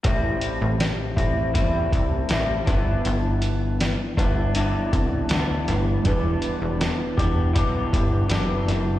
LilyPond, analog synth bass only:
\new Staff \with { instrumentName = "Analog synth bass" } { \clef bass \time 4/4 \key a \dorian \tempo 4 = 80 a,,8 r16 a,,8 r16 a,,8 e,8 c,8 a,,8 g,,8 | g,,4~ g,,16 r16 g,,4 c,8 d,8 g,,8 | e,,8 r16 e,,8 r16 e,,8 b,,8 g,,8 fis,,8 fis,,8 | }